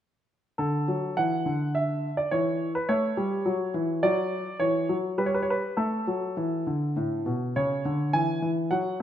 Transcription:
0.58 D3 A4
0.88 F#3
1.17 E3 F#5
1.46 D3
1.75 E5
2.17 D5
2.31 E3 C#5
2.75 B4
2.89 A3 C#5
3.17 G3
3.46 F#3
3.74 E3
4.03 F#3 D5
4.60 E3 C#5
4.89 F#3
5.18 G3 B4
5.26 C#5
5.34 B4
5.42 C#5
5.50 B4
5.77 A3 A4
6.07 F#3
6.37 E3
6.67 D3
6.96 A2
7.26 B2
7.56 C#3 C#5
7.85 D3
8.13 E3 G#5
8.42 E3
8.71 F#3 F#5

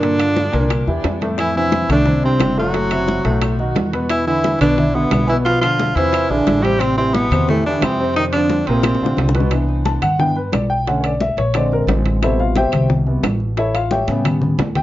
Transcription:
Already playing: G2 D3 D4
0.02 A#2 A#3 A#4, high bongo, high conga, high timbale
0.18 D3 D4 F4, high conga, high timbale, claves
0.37 high bongo, high conga, low timbale
0.52 C2 A#2 A#3 A#4, high bongo, high conga, high timbale
0.70 high bongo, high conga, high timbale, claves
0.87 E2 E3 E4 G4, high bongo, high conga
1.04 F2, high bongo, low bongo, high conga, high timbale, low timbale
1.21 A2 A3 A4, high bongo, high conga, high timbale
1.38 E3 E4, high bongo, high timbale, claves
1.56 C3 E3 C4 D4 E4, high conga
1.72 high bongo, high conga, high timbale, low timbale
1.89 C2 A2 D3 A3 D4 A4, high conga, low conga, high timbale, claves
2.06 C3 C4 D4, high bongo, high conga, low conga
2.24 C3 C4 D4, high conga
2.39 F#1, high bongo, low bongo, high conga, high timbale, low timbale, claves
2.57 A2 F#3 A3 F#4 A4, high conga
2.74 A2 A3 A4, high bongo, high conga, high timbale
2.91 C3 C4 E4, high conga, high timbale, claves
3.08 high bongo, high conga, low timbale
3.25 B1 A2 A3 A4, high bongo, high conga, high timbale
3.42 high bongo, high timbale, claves
3.59 D#3 D#4 F#4, high bongo, high conga
3.75 E2, high bongo, low bongo, high conga, high timbale, low timbale
3.93 B2 B3 B4, high bongo, high conga, high timbale
4.09 E3 E4, high bongo, high conga, high timbale, claves
4.27 D3 E3 D4 E4, high conga
4.44 high bongo, high conga, high timbale, low timbale
4.60 B1 B2 D3 B3 D4 B4, high conga, low conga, high timbale, claves
4.77 D3 D4 E4, high bongo, high conga, low conga
4.95 B2 D3 B3 D4 E4, high conga
5.11 B1, high bongo, low bongo, high conga, high timbale, low timbale, claves
5.27 B2 E3 B3 E4 B4, high conga
5.45 B2 F3 B3 F4 B4, high bongo, high conga, high timbale
5.61 D3 F3 D4 F4, high conga, high timbale, claves
5.79 high bongo, high conga, low timbale
5.96 E2 C3 E3 C4 E4 C5, high bongo, high conga, high timbale
6.13 high bongo, high conga, high timbale, claves
6.29 A#1 D3 E3 D4 E4 G#4, high bongo, high conga
6.47 A1, high bongo, low bongo, high conga, high timbale, low timbale
6.62 C3 G3 C4 G4 C5, high bongo, high conga, high timbale
6.80 C3 C4, high bongo, high conga, high timbale, claves
6.97 C3 E3 C4 E4 G4, high conga
7.14 B2 B3, high bongo, high conga, high timbale, low timbale
7.31 E2 C3 C4 C5, high conga, low conga, high timbale, claves
7.48 A2 E3 A3 E4 G4, high bongo, high conga, low conga
7.65 D3 E3 D4 E4 G4, high conga
7.81 F2 C3 C4, high bongo, low bongo, high conga, high timbale, low timbale, claves
7.99 C3 C4 C5, high conga
8.15 C3 D#3 C4 D#4 C5, high bongo, high conga, high timbale
8.32 D3 F3 C4 D4 F4, high conga, high timbale, claves
8.50 high bongo, high conga, low timbale
8.67 A#1 A#2 C3 A#3 C4 A#4, high bongo, high conga, high timbale
8.83 high bongo, high conga, high timbale, claves
8.95 high bongo
9.01 A#1 D3 D4 F4, high conga
9.06 high bongo
9.17 C2, low bongo, high conga, high timbale, low timbale
9.29 low bongo
9.35 B2 B3 B4, high conga, high timbale
9.40 low bongo
9.51 E3 B3 D4, high bongo, high timbale, claves
9.68 high conga
9.85 A5, high bongo, high conga, high timbale, low timbale
10.02 G2 F#5, high conga, low conga, high timbale, claves
10.19 E3 B3 D4 G5, high bongo, high conga, low conga
10.36 B4, high conga
10.52 B1 D5, high bongo, low bongo, high conga, high timbale, low timbale, claves
10.70 G5, high conga
10.86 D3 A3 C#4 F#5, high bongo, high conga, high timbale
11.00 C#5, high conga, high timbale, claves
11.05 D5
11.21 E5, high bongo, high conga, low timbale
11.37 A#1 C#5, high bongo, high conga, high timbale
11.54 D3 G#3 C4 D5, high bongo, high conga, high timbale, claves
11.72 A#4, high bongo, high conga
11.87 A1, high bongo, low bongo, high conga, high timbale, low timbale
12.06 high bongo, high conga, high timbale
12.22 B2 C3 G3 E4 A4 C5 E5, high bongo, high conga, high timbale, claves
12.39 F4 F5, high conga
12.56 G4 C5 E5 G5, high bongo, high conga, high timbale, low timbale
12.72 C2, high conga, low conga, high timbale, claves
12.90 high bongo, high conga, low conga
13.07 C3 G3 B3, high conga
13.23 A1, high bongo, low bongo, high conga, high timbale, low timbale, claves
13.40 high conga
13.57 E4 A4 C#5 E5, high bongo, high conga, high timbale
13.74 F4 F5, high conga, high timbale, claves
13.91 G4 C#5 E5 G5, high bongo, high conga, low timbale
14.08 A2 C#3 G3 B3, high bongo, high conga, high timbale
14.25 high bongo, low conga, high timbale, claves
14.41 high bongo, low conga
14.58 D2, high bongo, low bongo, low conga, high timbale, low timbale
14.75 G5, high bongo, low conga, high timbale

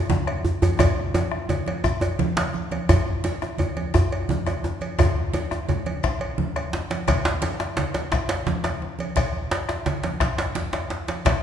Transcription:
0.10 djembe slap, high conga, djembe tone, djembe bass, low conga
0.27 bombo rim, cowbell, high conga
0.45 djembe bass
0.62 cowbell, djembe slap, high conga, djembe tone, djembe bass
0.79 bombo rim, bombo low, cowbell, high conga, djembe tone, low conga, djembe bass, shekere
0.98 djembe slap
1.14 cowbell, djembe slap, djembe tone, high conga
1.32 bombo rim
1.49 cowbell, djembe tone, high conga, low conga, djembe bass
1.66 cowbell, djembe slap, high conga, djembe tone
1.84 bombo rim, bombo low, high conga, djembe tone, shekere
2.01 cowbell, djembe slap, djembe tone
2.19 djembe slap, high conga, low conga, djembe bass, shekere
2.37 bombo rim, cowbell, djembe slap, low conga
2.54 bombo rim, high conga, shekere
2.71 bombo rim, cowbell, djembe slap, high conga, djembe tone
2.89 bombo rim, bombo low, cowbell, djembe slap, djembe bass, low conga, shekere
3.06 djembe slap, high conga
3.24 cowbell, djembe slap, high conga, djembe tone
3.42 bombo rim, djembe slap, djembe tone
3.58 cowbell, djembe tone, low conga, djembe bass
3.77 cowbell, high conga
3.94 bombo rim, bombo low, djembe slap, djembe tone, djembe bass, shekere
4.12 cowbell
4.29 djembe slap, high conga, djembe tone, low conga, djembe bass
4.47 bombo rim, cowbell, djembe slap, djembe tone, shekere
4.64 djembe tone
4.81 cowbell, high conga, shekere
4.99 bombo rim, bombo low, cowbell, djembe slap, low conga, djembe bass, shekere
5.16 djembe slap, high conga
5.34 cowbell, djembe slap, high conga, djembe tone
5.51 bombo rim, djembe slap, djembe tone
5.69 cowbell, djembe tone, low conga, djembe bass
5.86 cowbell, high conga
6.03 bombo rim, bombo low, djembe slap, djembe tone, shekere
6.21 cowbell
6.38 djembe slap, high conga, low conga, djembe bass
6.56 bombo rim, cowbell, djembe slap, shekere
6.73 djembe slap, djembe tone
6.90 cowbell, djembe slap, high conga, shekere
7.08 bombo rim, bombo low, cowbell, djembe slap, low conga, djembe bass, shekere
7.25 djembe slap, high conga
7.42 cowbell, djembe slap, high conga, djembe tone
7.60 bombo rim, djembe slap
7.77 cowbell, djembe slap, low conga, djembe bass
7.94 cowbell, djembe slap, high conga
8.12 bombo rim, bombo low, djembe slap, djembe tone, shekere
8.29 cowbell, djembe slap
8.47 djembe slap, high conga, low conga, djembe bass
8.64 bombo rim, cowbell, djembe slap, shekere
8.82 djembe tone
8.99 cowbell, high conga, shekere
9.16 bombo rim, bombo low, cowbell, djembe slap, high conga, low conga, djembe bass, shekere
9.35 djembe slap
9.51 cowbell, djembe slap, djembe tone
9.69 bombo rim, djembe slap, high conga
9.86 cowbell, djembe slap, low conga, djembe bass
10.03 bombo rim, cowbell, djembe slap, high conga
10.20 bombo rim, bombo low, djembe slap, djembe tone, shekere
10.38 cowbell, djembe slap, high conga, djembe bass
10.55 djembe slap, high conga, low conga, djembe bass
10.73 bombo rim, cowbell, djembe slap, djembe bass, shekere
10.90 djembe slap, high conga
11.08 bombo rim, cowbell, djembe slap, high conga, shekere
11.25 bombo rim, bombo low, cowbell, djembe slap, low conga, djembe bass, shekere

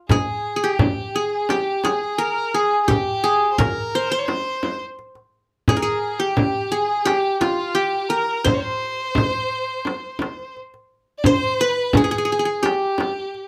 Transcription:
0.09 G#4, frame drum, darbuka dum
0.56 G#4
0.62 G4, darbuka ka
0.79 frame drum, darbuka dum
1.15 G#4, darbuka ka
1.49 G4, darbuka tek, frame drum
1.84 G#4, darbuka tek, frame drum
2.03 darbuka ka
2.18 A#4, darbuka ka
2.38 darbuka ka
2.54 G#4
2.83 G#4
2.88 G4, frame drum, darbuka dum
3.24 G#4
3.43 darbuka ka
3.52 C5
3.58 A#4, frame drum, darbuka dum
3.95 C5
4.10 C5
4.19 C#5
4.25 C5, darbuka tek, frame drum
4.63 frame drum
4.82 darbuka ka
4.99 darbuka ka
5.15 darbuka ka
5.68 G#4, frame drum, darbuka dum
5.77 A#4
5.82 G#4
6.19 G4, darbuka ka
6.37 frame drum, darbuka dum
6.71 G#4, darbuka ka
7.05 G4, darbuka tek, frame drum
7.41 F4, darbuka tek, frame drum
7.60 darbuka ka
7.75 G4, darbuka ka
7.95 darbuka ka
8.09 A#4
8.44 C5, frame drum, darbuka dum
8.54 C#5
8.60 C5
8.65 darbuka ka
8.83 darbuka ka
9.15 frame drum, darbuka dum
9.85 darbuka tek, frame drum
10.19 darbuka tek, frame drum
10.39 darbuka ka
10.56 darbuka ka
10.74 darbuka ka
11.18 D5
11.24 C5, frame drum, darbuka dum
11.44 darbuka ka
11.60 B4, darbuka ka
11.78 darbuka ka
11.93 G#4, frame drum, darbuka dum
12.04 G#4
12.11 G#4
12.18 G#4
12.25 G#4
12.31 G#4, darbuka ka
12.39 G#4
12.45 G#4, darbuka ka
12.63 G4, darbuka tek, frame drum
12.98 darbuka tek, frame drum
13.34 darbuka ka

